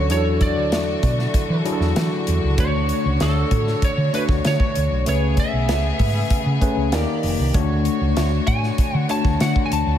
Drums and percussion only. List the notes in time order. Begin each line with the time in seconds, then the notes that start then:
0.10 closed hi-hat
0.41 kick, closed hi-hat
0.72 snare, closed hi-hat
1.03 kick, closed hi-hat
1.19 snare
1.34 kick, closed hi-hat
1.66 closed hi-hat
1.81 snare
1.96 snare, closed hi-hat
2.27 closed hi-hat
2.58 kick, closed hi-hat
2.89 closed hi-hat
3.20 snare, closed hi-hat
3.51 kick, closed hi-hat
3.67 snare
3.82 kick, closed hi-hat
4.14 closed hi-hat
4.29 kick, snare
4.45 snare, closed hi-hat
4.60 kick
4.76 closed hi-hat
5.06 closed hi-hat
5.37 kick, closed hi-hat
5.69 snare, closed hi-hat
5.99 kick, open hi-hat
6.30 kick, closed hi-hat
6.61 kick, closed hi-hat
6.92 snare, closed hi-hat
7.23 open hi-hat
7.54 kick, closed hi-hat
7.85 closed hi-hat
8.17 snare, closed hi-hat
8.47 kick, closed hi-hat
8.63 snare
8.78 kick, closed hi-hat
9.09 closed hi-hat
9.25 kick, snare
9.40 snare, closed hi-hat
9.56 kick
9.72 closed hi-hat